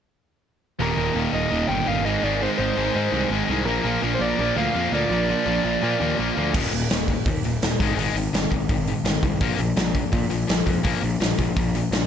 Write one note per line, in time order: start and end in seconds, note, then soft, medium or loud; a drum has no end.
0.79 0.92 D#1 medium
0.79 0.96 D#2 medium
0.79 0.96 A#2 medium
0.79 0.97 D#3 medium
0.79 1.14 A#4 medium
0.97 1.09 D#1 medium
0.97 1.14 D#2 medium
0.97 1.14 A#2 medium
0.97 1.16 D#3 medium
1.15 1.27 D#1 medium
1.15 1.31 D#2 medium
1.15 1.32 A#2 medium
1.15 1.33 D#3 medium
1.32 1.45 D#1 medium
1.32 1.49 D#2 medium
1.32 1.50 A#2 medium
1.32 1.50 D#3 medium
1.32 1.68 D#5 medium
1.50 1.63 D#1 medium
1.50 1.67 D#2 medium
1.50 1.68 A#2 medium
1.50 1.69 D#3 medium
1.68 1.81 G1 medium
1.68 1.85 D#2 medium
1.68 1.86 A#2 medium
1.68 1.87 D#3 medium
1.68 1.88 G5 medium
1.86 2.05 G1 medium
1.86 2.04 D#2 medium
1.86 2.04 A#2 medium
1.86 2.04 D#3 medium
1.86 2.05 F5 medium
2.04 2.17 G#1 medium
2.04 2.22 G#2 medium
2.04 2.22 D#3 medium
2.04 2.23 G#3 medium
2.04 2.23 D#5 medium
2.23 2.46 G#1 medium
2.23 2.40 G#2 medium
2.23 2.41 D#3 medium
2.23 2.41 G#3 medium
2.23 2.42 D5 medium
2.41 2.58 G#2 medium
2.41 2.58 D#3 medium
2.41 2.59 G#3 medium
2.41 2.48 C5 medium
2.58 2.71 G#1 medium
2.58 2.76 G#2 medium
2.58 2.76 D#3 medium
2.58 2.77 G#3 medium
2.58 3.26 C5 medium
2.77 2.89 G#1 medium
2.77 2.94 G#2 medium
2.77 2.94 D#3 medium
2.77 2.95 G#3 medium
2.95 3.11 G#2 medium
2.95 3.07 G#2 medium
2.95 3.12 D#3 medium
2.95 3.13 G#3 medium
3.12 3.24 C2 medium
3.12 3.29 G#2 medium
3.12 3.29 D#3 loud
3.12 3.30 G#3 medium
3.30 3.42 G#1 medium
3.30 3.47 G#2 medium
3.30 3.47 D#3 medium
3.30 3.48 G#3 medium
3.48 3.67 C2 medium
3.48 3.65 G#2 medium
3.48 3.66 D#3 medium
3.48 3.66 G#3 medium
3.65 3.78 A#1 medium
3.65 3.83 A#2 medium
3.65 3.84 F3 medium
3.65 3.85 A#3 loud
3.65 4.00 A#4 medium
3.83 3.96 A#1 medium
3.83 4.01 A#2 medium
3.83 4.02 F3 medium
3.83 4.03 A#3 medium
4.01 4.15 A#1 medium
4.01 4.20 A#2 medium
4.01 4.21 F3 loud
4.01 4.22 A#3 loud
4.14 4.21 C5 medium
4.21 4.32 A#1 medium
4.21 4.37 A#2 medium
4.21 4.38 F3 medium
4.21 4.39 A#3 loud
4.21 4.57 D5 medium
4.38 4.50 A#1 medium
4.38 4.54 A#2 medium
4.38 4.55 F3 medium
4.38 4.56 A#3 medium
4.55 4.68 D2 medium
4.55 4.72 A#2 medium
4.55 4.73 F3 medium
4.55 4.75 A#3 medium
4.55 4.91 F5 loud
4.74 4.87 F2 medium
4.74 4.91 A#2 medium
4.74 4.92 F3 medium
4.74 4.94 A#3 medium
4.92 5.04 D2 medium
4.92 5.10 A#2 medium
4.92 5.10 F3 medium
4.92 5.11 A#3 medium
4.92 6.15 D5 medium
5.10 5.33 A#1 medium
5.10 5.27 A#2 medium
5.10 5.28 F3 medium
5.10 5.28 A#3 medium
5.28 5.45 A#2 medium
5.28 5.45 F3 medium
5.28 5.46 A#3 medium
5.46 5.58 A#1 medium
5.46 5.63 A#2 medium
5.46 5.63 F3 medium
5.46 5.64 A#3 medium
5.64 5.76 A#1 medium
5.64 5.81 A#2 medium
5.64 5.82 F3 medium
5.64 5.82 A#3 loud
5.82 5.98 A#2 medium
5.82 5.94 A#2 medium
5.82 5.99 F3 medium
5.82 6.00 A#3 medium
6.00 6.12 D#2 medium
6.00 6.18 A#2 medium
6.00 6.18 F3 medium
6.00 6.19 A#3 medium
6.19 6.30 A#1 medium
6.19 6.36 A#2 medium
6.19 6.37 F3 medium
6.19 6.37 A#3 medium
6.37 6.56 D2 medium
6.37 6.54 A#2 medium
6.37 6.54 F3 medium
6.37 6.54 A#3 medium
6.54 6.66 D#1 medium
6.54 6.71 D#2 medium
6.54 6.72 A#2 medium
6.54 6.72 D#3 medium
6.54 kick loud
6.54 crash loud
6.72 6.85 D#1 medium
6.72 6.89 D#2 medium
6.72 6.89 A#2 medium
6.72 open hi-hat medium
6.90 7.14 D#1 medium
6.90 7.07 D#2 medium
6.90 7.07 A#2 medium
6.90 snare loud
6.90 open hi-hat medium
7.08 7.25 D#2 medium
7.08 7.25 A#2 medium
7.08 kick medium
7.08 open hi-hat medium
7.26 7.38 D#2 medium
7.26 7.43 D#2 medium
7.26 7.43 A#2 medium
7.26 kick loud
7.26 open hi-hat medium
7.44 7.56 D#1 medium
7.44 7.61 D#2 medium
7.44 7.61 A#2 medium
7.44 open hi-hat medium
7.62 7.74 D#1 medium
7.62 7.79 D#2 medium
7.62 7.79 A#2 medium
7.62 snare loud
7.62 open hi-hat medium
7.80 7.92 G#1 medium
7.80 7.97 G#2 medium
7.80 7.98 D#3 medium
7.80 7.98 G#3 medium
7.80 kick loud
7.80 open hi-hat medium
7.97 8.09 G#1 medium
7.97 8.15 G#2 medium
7.97 8.15 D#3 medium
7.97 8.15 G#3 loud
7.97 open hi-hat medium
8.14 8.27 G#1 medium
8.14 8.32 G#2 medium
8.14 8.32 D#3 medium
8.14 open hi-hat medium
8.33 8.45 G#1 medium
8.33 8.49 G#2 medium
8.33 8.50 D#3 medium
8.33 snare loud
8.33 open hi-hat medium
8.50 8.63 G#1 medium
8.50 8.67 G#2 medium
8.50 8.68 D#3 medium
8.50 kick medium
8.50 open hi-hat medium
8.69 8.93 G#1 medium
8.69 8.86 G#2 medium
8.69 8.86 D#3 medium
8.69 kick loud
8.69 open hi-hat medium
8.87 9.04 G#2 medium
8.87 9.04 D#3 medium
8.87 open hi-hat medium
9.04 9.16 G#1 medium
9.04 9.21 G#2 medium
9.04 9.21 D#3 medium
9.04 snare loud
9.04 open hi-hat medium
9.23 9.35 C2 medium
9.23 9.39 G#2 medium
9.23 9.39 D#3 medium
9.23 kick medium
9.23 open hi-hat medium
9.41 9.53 A#1 medium
9.41 9.57 A#2 medium
9.41 9.57 F3 medium
9.41 9.59 A#3 loud
9.41 kick loud
9.41 open hi-hat medium
9.58 9.71 A#1 medium
9.58 9.75 A#2 medium
9.58 9.75 F3 medium
9.58 open hi-hat medium
9.76 10.00 A#1 medium
9.76 9.93 A#2 medium
9.76 9.93 F3 medium
9.76 snare loud
9.76 open hi-hat medium
9.95 10.11 A#2 medium
9.95 10.11 F3 medium
9.95 kick medium
9.95 open hi-hat medium
10.12 10.29 A#2 medium
10.12 10.25 A#2 medium
10.12 10.29 F3 medium
10.12 kick loud
10.12 open hi-hat medium
10.30 10.42 A#1 medium
10.30 10.46 A#2 medium
10.30 10.47 F3 medium
10.30 open hi-hat medium
10.47 10.61 A#1 medium
10.47 10.65 A#2 medium
10.47 10.65 F3 medium
10.47 snare loud
10.47 open hi-hat medium
10.66 10.78 F2 medium
10.66 10.82 A#2 medium
10.66 10.83 F3 medium
10.66 kick medium
10.66 open hi-hat medium
10.84 10.97 A#1 medium
10.84 11.00 A#2 medium
10.84 11.01 F3 medium
10.84 11.02 A#3 loud
10.84 kick loud
10.84 open hi-hat medium
11.02 11.15 A#1 medium
11.02 11.19 A#2 medium
11.02 11.19 F3 medium
11.02 open hi-hat medium
11.20 11.32 A#1 medium
11.20 11.37 A#2 medium
11.20 11.37 F3 medium
11.20 snare loud
11.20 open hi-hat medium
11.38 11.51 A#1 medium
11.38 11.54 A#2 medium
11.38 11.55 F3 medium
11.38 kick medium
11.38 open hi-hat medium
11.56 11.80 A#1 medium
11.56 11.73 A#2 medium
11.56 11.73 F3 medium
11.56 kick loud
11.56 open hi-hat medium
11.75 11.91 A#2 medium
11.75 11.91 F3 medium
11.75 open hi-hat medium
11.91 12.04 A#1 medium
11.91 12.07 A#2 medium
11.91 12.07 F3 medium
11.91 snare loud
11.91 open hi-hat medium